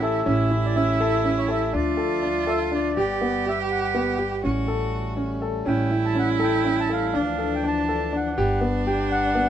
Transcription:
Already playing: upright bass A1, harmonium A3 C#4 G4, cello E4
0.02 grand piano A4, accordion E5
0.26 upright bass A1, grand piano C#4, cello E4
0.51 grand piano E4
0.65 accordion D5
0.76 grand piano C#4, accordion E5
1.00 grand piano A4
1.24 grand piano C#4
1.37 accordion C#5
1.48 grand piano A4, accordion E5
1.73 upright bass D2, harmonium F3 D4 E5, grand piano D4, cello F4, accordion D5
1.97 grand piano A4
2.22 grand piano D4
2.47 grand piano A4, accordion E5
2.72 grand piano D4, accordion D5
2.95 upright bass G1, harmonium G3 B4 F#5, grand piano G4, cello G4
3.21 grand piano B3
3.46 grand piano G4, accordion E5
3.72 accordion F#5
3.94 grand piano B3
4.18 grand piano G4
4.44 upright bass A1, harmonium G3 A3 C#4, grand piano C#4, cello F#4
4.68 grand piano A4
5.17 grand piano C#4
5.42 grand piano A4
5.65 upright bass A1, grand piano C#4, cello E4, accordion G5
5.91 grand piano E4
6.05 accordion A5
6.15 grand piano C#4, accordion F#5
6.40 grand piano A4, accordion G5
6.64 grand piano C#4
6.80 accordion A5
6.89 grand piano A4, accordion F5
7.12 upright bass D2, harmonium E3 F3 D4, grand piano D4, cello D4
7.38 grand piano A4
7.55 accordion G5
7.64 grand piano D4
7.68 accordion A5
7.89 grand piano A4
8.13 grand piano D4, accordion F#5
8.36 upright bass G1, harmonium G3 B4 F#5, cello D4, grand piano G4
8.61 grand piano B3
8.87 grand piano G4, accordion G5
9.12 accordion F#5
9.35 grand piano B3

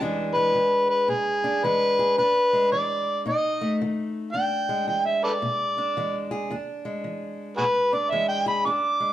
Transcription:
0.00 steel-string acoustic guitar E2 E3 G#3 D4 G#4
0.34 steel-string acoustic guitar G#3, harmonica B4
0.55 steel-string acoustic guitar E3
0.90 harmonica B4
1.08 steel-string acoustic guitar B2, harmonica G#4
1.44 steel-string acoustic guitar D4
1.63 steel-string acoustic guitar E3 G#3, harmonica B4
1.99 steel-string acoustic guitar G#4
2.18 steel-string acoustic guitar E2 D4, harmonica B4
2.53 steel-string acoustic guitar G#3
2.72 steel-string acoustic guitar E3, harmonica D5
3.26 steel-string acoustic guitar B2 D#4, harmonica D#5
3.61 steel-string acoustic guitar A3
3.82 steel-string acoustic guitar D#3
4.33 steel-string acoustic guitar E2 D4, harmonica G5
4.69 steel-string acoustic guitar G#3
4.88 steel-string acoustic guitar E3, harmonica G5
5.06 harmonica E5
5.24 harmonica A4 B4 D5
5.42 steel-string acoustic guitar B2
5.78 steel-string acoustic guitar D4
5.97 steel-string acoustic guitar E3 G#3
6.31 steel-string acoustic guitar G#4
6.51 steel-string acoustic guitar E2 D4
6.85 steel-string acoustic guitar G#3
7.04 steel-string acoustic guitar E3
7.57 steel-string acoustic guitar B2, harmonica F#4 G#4 B4
7.93 steel-string acoustic guitar D4, harmonica D5
8.10 steel-string acoustic guitar E3 G#3, harmonica E5
8.29 harmonica G5
8.46 steel-string acoustic guitar G#4, harmonica B5
8.65 steel-string acoustic guitar E2 D4, harmonica D6
9.00 steel-string acoustic guitar G#3

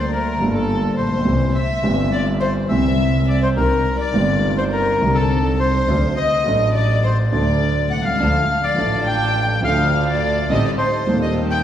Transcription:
Already playing: double bass D2, grand piano D2 D3 G3 A#3 D4 A4, violin section C5
0.00 bandoneon C5
0.12 violin section A#4, bandoneon A#4
0.39 double bass G1, grand piano G1 G2 G3 A#3 D4
0.43 grand piano A4
0.54 violin section A4, bandoneon A4
0.97 double bass A#1, violin section C5, bandoneon C5
1.06 grand piano A1
1.12 grand piano A#1
1.19 grand piano B1
1.25 grand piano C2 C3 E3 G3 C4 G4, double bass C2
1.55 bandoneon E5, violin section E5
1.82 grand piano G1 G2 E3 G3 C4 G4, double bass G1
2.12 bandoneon D5, violin section D5
2.40 bandoneon C5, violin section C5
2.69 grand piano C2 C3 E3 G3 C4, double bass C2, bandoneon E5, violin section E5
2.73 grand piano G4
3.27 violin section D5, bandoneon D5
3.42 violin section C5, bandoneon C5
3.55 grand piano C2 C3 D#3 C4 D4 G4, double bass C2, violin section A#4, bandoneon A#4
3.99 violin section D5, bandoneon D5
4.12 double bass G1, grand piano G1 G2 D#3 C4 D4
4.16 grand piano G4
4.58 bandoneon C5, violin section C5
4.70 violin section A#4, bandoneon A#4
4.99 double bass C2, grand piano C2 C3 D#3 C4 D4
5.03 grand piano G4
5.14 bandoneon A4, violin section A4
5.60 violin section C5, bandoneon C5
5.87 double bass D2, grand piano D2 D3 F#3 A3 D4 A4
6.15 violin section D#5, bandoneon D#5
6.44 double bass A1, grand piano A1 A2 F#3 A3 D4
6.48 grand piano A4
6.74 violin section D5, bandoneon D5
7.03 violin section C5, bandoneon C5
7.31 double bass D2, grand piano D2 D3 F#3 A3 D4 A4, violin section D5, bandoneon D5
7.90 double bass C2, violin section F#5, bandoneon F#5
7.98 grand piano B1
8.04 grand piano C2, bandoneon F5, violin section F5
8.12 grand piano C#2
8.18 double bass D2, grand piano D2 D3 F3 A3 D4 A4, string section D4 F4 A4
8.63 violin section D5, bandoneon D5
8.74 grand piano A1 A2 F3 A3 D4, double bass A1, string section D4 F4 A4
8.78 grand piano A4
9.06 violin section G5, bandoneon G5
9.61 grand piano D2 D3 F3 A3 D4 A4, double bass D2, string section D4 F4 A4, bandoneon F5
9.65 violin section F5
10.08 violin section D5, bandoneon D5
10.49 grand piano A1 A2 G3 C4 D#4 A4, double bass A1, string section C4 G4 A4, bandoneon D#5, violin section D#5
10.64 bandoneon D5, violin section D5
10.78 bandoneon C5, violin section C5
11.06 grand piano D#1 D#2 G3 C4 D#4 A4, double bass D#2, string section C4 G4 A4
11.22 bandoneon D#5, violin section D#5
11.51 bandoneon G5, violin section G5

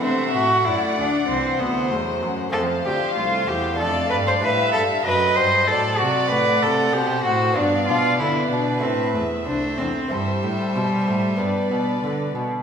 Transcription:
Already playing: violin section F#5
0.00 lute C3 A3 E4, cello section C3, viola section A3, cello C4, violin section E5
0.33 lute A2, cello section A2, cello F#4
0.65 lute F#2, cello section F#2, viola section A3, cello E4, violin section D5
0.97 cello section D2, lute D2, cello D4
1.28 cello section C2, viola section E3, cello C4, violin section C5
1.60 lute D2, cello section D2, cello B3
1.90 cello section E2, lute E2, viola section F#3, cello A3
2.22 cello section F#2, lute F#2
2.50 viola section F3, lute A3 C4 F4, cello A4, violin section C5 F5
2.54 cello section F2, lute F2
2.84 cello section D2, lute D2, cello G4
3.15 cello section C2, viola section A3, cello F4
3.47 lute E2, cello section E2, cello G4
3.74 lute A3 D4 A4
3.78 lute F2, cello section F2, viola section A3, cello A4, violin section D5 F5
4.10 lute G2, cello section G2, cello B4
4.27 cello C5
4.42 lute A2, cello section A2, viola section G3, cello B4, violin section E5
4.73 lute G2, cello section G2, cello A4
5.00 lute A3 F#4
5.04 lute F#2, cello section F#2, viola section F#3, cello B4, violin section D#5
5.35 lute G2, cello section G2, cello C5
5.67 cello section A2, lute A2, viola section F#3, cello A4, violin section D5 A5
5.98 lute C3, cello section C3, cello F#4
6.30 lute A2, cello section A2, viola section A3, cello B4, violin section F#5
6.62 lute C3, cello section C3, cello A4
6.93 lute B2, cello section B2, viola section C4, cello G4, violin section C5
7.24 lute A2, cello section A2, cello F#4
7.52 lute B3 D4 F4
7.57 lute G2, cello section G2, viola section B3, cello D4, violin section D5 F5
7.87 cello section B2, lute B2, cello F4
8.19 lute D3, cello section D3, cello E4, violin section B4 D5
8.50 cello section B2, lute B2, cello D4
8.79 lute A3 E4, cello C4, violin section E5
8.83 lute A2, cello section A2, viola section A3
9.14 cello section E2, lute E2, cello A3
9.46 cello section C2, viola section A3, cello D4, violin section C5
9.78 cello section E2, lute E2, cello C4
10.08 cello section G2, lute G2 C4 E4, cello G3, viola section G3, violin section C5 E5
10.43 cello section A2, lute A2
10.75 cello section B2, lute B2
11.07 cello section A2, lute A2
11.36 lute G2 B3 D4, cello section G2, viola section B3, violin section B4 D5
11.71 lute B2, cello section B2
12.04 lute D3, cello section D3
12.35 lute B2, cello section B2

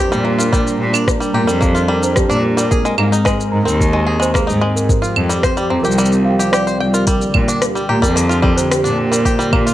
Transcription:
Already playing: analog synth pad G3 D4 A#4, celesta A#4 C5 A#5
0.00 five-string banjo G4, celesta G4
0.11 cello A#2, five-string banjo G3, shaker
0.25 five-string banjo A#3
0.38 five-string banjo F4, celesta A#4, shaker
0.53 five-string banjo G3, celesta A#4, kick, shaker
0.67 shaker
0.80 cello A#2
0.93 five-string banjo D4, claves, shaker
1.08 kick, cross-stick, shaker
1.20 five-string banjo G3, shaker
1.34 cello A#2, five-string banjo G4, celesta A#5
1.47 cello F2, five-string banjo G3, celesta A#4, shaker
1.61 five-string banjo A#3, kick, shaker
1.75 five-string banjo F4, shaker
1.88 five-string banjo G3
2.03 celesta C5, shaker
2.15 celesta G4, kick, cross-stick, shaker
2.29 cello A#2, five-string banjo D4, shaker
2.57 five-string banjo G3, celesta A#4, shaker
2.71 analog synth pad G#3 C4, five-string banjo G#4, celesta A#4, kick, shaker
2.85 five-string banjo G#3, shaker
2.98 cello G#2, five-string banjo A#3, claves
3.12 five-string banjo D#4, shaker
3.25 five-string banjo G#3, kick, cross-stick, shaker
3.40 shaker
3.52 cello G#2, celesta A#5
3.65 cello D#2, five-string banjo C4, celesta A#4, shaker
3.80 kick, shaker
3.93 five-string banjo G#3
4.07 five-string banjo G#4
4.20 five-string banjo G#3, celesta C5, shaker
4.34 five-string banjo A#3, celesta G#4, kick, cross-stick, shaker
4.47 cello G#2, five-string banjo D#4, shaker
4.61 five-string banjo G#3
4.75 celesta A#4, shaker
4.88 analog synth pad F3 G4, celesta A#4, kick, shaker
5.02 five-string banjo F4, shaker
5.16 cello F2, claves
5.29 five-string banjo G3, shaker
5.43 five-string banjo C5, kick, cross-stick, shaker
5.57 five-string banjo G3, shaker
5.70 cello F2, five-string banjo C4, celesta A#5
5.83 cello C2, five-string banjo G4, celesta A#4, shaker
5.91 shaker
5.98 five-string banjo G3, shaker
6.05 shaker
6.12 shaker
6.25 celesta F5
6.39 five-string banjo G4, shaker
6.52 five-string banjo G4, celesta D5, cross-stick, shaker
6.67 five-string banjo C5, shaker
6.80 cello C2, five-string banjo G5
6.93 five-string banjo F4, celesta A#4, shaker
7.07 analog synth pad D3 A#3 G4, five-string banjo G3, celesta A#4, kick, open hi-hat, shaker
7.22 shaker
7.34 cello A#2, kick, claves
7.48 five-string banjo D4, open hi-hat, shaker
7.62 cross-stick, open hi-hat, shaker
7.75 five-string banjo G3, shaker
7.89 cello A#2, five-string banjo G4, celesta A#5
8.02 cello F2, five-string banjo G3, celesta A#4, kick, open hi-hat, shaker
8.16 five-string banjo A#3, open hi-hat, shaker
8.29 five-string banjo F4, shaker
8.42 five-string banjo G3, kick
8.57 celesta C5, open hi-hat, shaker
8.71 celesta G4, cross-stick, open hi-hat, shaker
8.84 cello A#2, five-string banjo D4, open hi-hat, shaker
9.11 five-string banjo G3, celesta A#4, open hi-hat, shaker
9.24 five-string banjo G4, celesta A#4, kick, open hi-hat, shaker
9.39 five-string banjo G3, shaker
9.53 cello A#2, five-string banjo A#3, kick, claves
9.67 five-string banjo F4, open hi-hat, shaker

